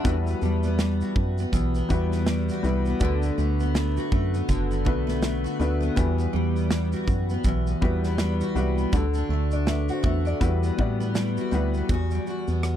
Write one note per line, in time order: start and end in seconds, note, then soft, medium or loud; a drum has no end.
0.00 0.14 D3 medium
0.00 1.09 G3 medium
0.00 0.14 A3 medium
0.00 0.14 D4 medium
0.00 0.46 F#4 medium
0.00 0.26 E5 medium
0.00 0.25 A5 medium
0.05 0.35 E2 loud
0.05 1.52 E2 medium
0.05 1.09 B3 medium
0.05 1.10 E4 medium
0.05 1.10 F#4 medium
0.05 1.10 B4 medium
0.05 kick loud
0.05 shaker medium
0.27 0.64 B3 medium
0.27 shaker medium
0.42 1.03 E2 loud
0.42 0.78 G3 medium
0.42 shaker soft
0.63 1.40 B3 medium
0.63 shaker soft
0.79 1.16 G3 medium
0.79 snare loud
0.79 shaker medium
1.01 2.51 F#4 medium
1.01 shaker soft
1.16 1.46 F#2 medium
1.16 kick loud
1.38 1.76 B3 medium
1.38 shaker medium
1.53 1.83 B1 loud
1.53 3.10 E2 medium
1.53 kick medium
1.53 shaker medium
1.75 2.12 B3 medium
1.75 shaker medium
1.89 2.51 E2 medium
1.89 2.43 G3 medium
1.89 2.27 G3 medium
1.89 2.44 B3 medium
1.89 2.44 E4 medium
1.89 2.44 F#4 medium
1.89 2.45 B4 medium
1.89 kick medium
1.89 shaker soft
2.12 2.87 B3 medium
2.12 snare soft
2.12 shaker soft
2.26 2.65 G3 medium
2.26 snare loud
2.26 shaker medium
2.49 3.97 F#4 medium
2.49 shaker medium
2.63 2.94 C2 medium
2.63 2.91 G3 medium
2.63 3.11 G3 medium
2.63 2.92 B3 medium
2.63 2.92 E4 medium
2.63 2.92 F#4 medium
2.63 2.93 B4 medium
2.63 shaker medium
2.86 3.23 B3 medium
2.86 shaker soft
2.99 3.31 D2 loud
2.99 4.47 D3 medium
2.99 4.05 A3 medium
2.99 4.05 B3 medium
2.99 4.05 D4 medium
2.99 4.05 F#4 medium
2.99 4.05 B4 medium
2.99 kick loud
2.99 shaker medium
3.23 3.60 B3 medium
3.23 shaker medium
3.38 3.99 D2 loud
3.38 3.73 A3 medium
3.38 shaker soft
3.60 4.34 B3 medium
3.60 shaker soft
3.74 4.10 A3 medium
3.74 snare loud
3.74 shaker medium
3.97 5.44 F#4 medium
3.97 shaker soft
4.12 4.42 F#2 medium
4.12 4.84 A3 medium
4.12 kick loud
4.34 4.70 B3 medium
4.34 shaker soft
4.48 4.88 F#1 loud
4.48 6.06 D3 medium
4.48 kick medium
4.48 shaker medium
4.71 5.07 B3 medium
4.71 shaker medium
4.85 5.47 B1 medium
4.85 5.22 A3 medium
4.85 5.40 A3 medium
4.85 5.40 B3 medium
4.85 5.40 D4 medium
4.85 5.41 F#4 medium
4.85 5.41 B4 loud
4.85 kick loud
5.07 5.80 B3 medium
5.07 snare soft
5.07 shaker medium
5.22 5.58 A3 medium
5.22 snare loud
5.22 shaker medium
5.44 6.36 F#4 medium
5.44 shaker medium
5.59 5.90 D2 medium
5.59 6.06 A3 medium
5.59 5.88 A3 medium
5.59 5.88 B3 medium
5.59 5.88 D4 medium
5.59 5.88 F#4 medium
5.59 5.89 B4 medium
5.59 shaker medium
5.80 6.18 B3 medium
5.80 shaker soft
5.96 7.44 E2 loud
5.96 6.27 E2 loud
5.96 7.01 G3 medium
5.96 7.01 B3 medium
5.96 7.01 E4 medium
5.96 7.01 F#4 medium
5.96 7.02 B4 loud
5.96 kick loud
5.96 shaker medium
6.18 6.55 B3 medium
6.18 shaker medium
6.33 6.95 E2 medium
6.33 6.69 G3 medium
6.56 7.29 B3 medium
6.56 shaker soft
6.71 7.08 G3 medium
6.71 snare loud
6.71 shaker medium
6.92 8.40 F#4 medium
6.92 shaker soft
7.07 7.38 F#2 medium
7.07 kick loud
7.07 shaker soft
7.29 7.66 B3 medium
7.29 shaker soft
7.44 7.75 B1 loud
7.44 9.02 E2 medium
7.44 kick medium
7.44 shaker medium
7.67 8.03 B3 medium
7.67 shaker medium
7.81 8.43 E2 medium
7.81 8.36 G3 medium
7.81 8.18 G3 medium
7.81 8.36 B3 medium
7.81 8.36 E4 medium
7.81 8.37 F#4 medium
7.81 8.37 B4 loud
7.81 kick medium
8.04 8.77 B3 medium
8.04 snare soft
8.04 shaker medium
8.18 8.54 G3 medium
8.18 snare loud
8.18 shaker medium
8.41 9.89 F#4 medium
8.41 shaker medium
8.55 8.86 C2 medium
8.55 8.84 G3 medium
8.55 9.02 G3 medium
8.55 8.84 B3 medium
8.55 8.84 E4 medium
8.55 8.84 F#4 medium
8.55 8.84 B4 medium
8.55 shaker medium
8.78 9.02 B3 medium
8.78 shaker soft
8.92 9.23 D2 loud
8.92 10.50 D3 medium
8.92 9.97 D4 medium
8.92 9.97 F#4 medium
8.92 9.31 A4 loud
8.92 kick loud
8.92 shaker medium
9.14 9.51 D4 medium
9.14 shaker medium
9.29 9.90 D2 loud
9.29 9.65 A3 medium
9.51 10.24 D4 medium
9.51 9.67 A4 medium
9.51 9.67 D5 medium
9.51 shaker medium
9.66 10.02 A3 medium
9.66 9.89 B4 medium
9.66 9.88 E5 medium
9.66 snare loud
9.66 shaker medium
9.89 10.81 F#4 medium
9.89 10.04 C5 medium
9.89 10.04 F#5 medium
9.89 shaker soft
10.03 10.34 E2 loud
10.03 10.49 A3 medium
10.03 10.26 B4 medium
10.03 10.26 E5 medium
10.03 kick loud
10.25 10.49 D4 medium
10.25 10.62 A4 medium
10.25 10.62 D5 medium
10.25 shaker soft
10.41 10.71 E2 loud
10.41 11.89 E2 medium
10.41 10.72 G3 loud
10.41 10.72 B3 medium
10.41 10.72 E4 medium
10.41 10.73 F#4 medium
10.41 10.73 B4 loud
10.41 kick medium
10.41 shaker medium
10.63 11.00 B3 medium
10.63 shaker medium
10.78 11.39 A2 medium
10.78 11.14 G3 medium
10.78 11.32 G3 medium
10.78 11.32 B3 medium
10.78 11.33 E4 medium
10.78 11.33 F#4 medium
10.78 11.33 D5 medium
10.78 kick medium
11.00 11.74 B3 medium
11.00 shaker medium
11.15 11.51 G3 medium
11.15 snare loud
11.15 shaker medium
11.37 11.91 F#4 medium
11.37 shaker medium
11.51 11.83 D2 medium
11.51 12.11 G3 medium
11.51 11.80 G3 medium
11.51 11.80 B3 medium
11.51 11.81 E4 medium
11.51 11.81 F#4 medium
11.51 11.81 B4 medium
11.51 shaker medium
11.74 12.49 B3 medium
11.74 shaker soft
11.89 12.20 E2 loud
11.89 12.77 E2 medium
11.89 12.26 F#4 medium
11.89 kick loud
11.89 shaker medium
12.11 12.77 G3 medium
12.11 shaker medium
12.27 12.77 F#4 medium
12.27 shaker soft
12.48 12.77 E2 medium
12.48 12.77 B3 soft
12.48 shaker soft
12.63 cross-stick loud
12.63 shaker medium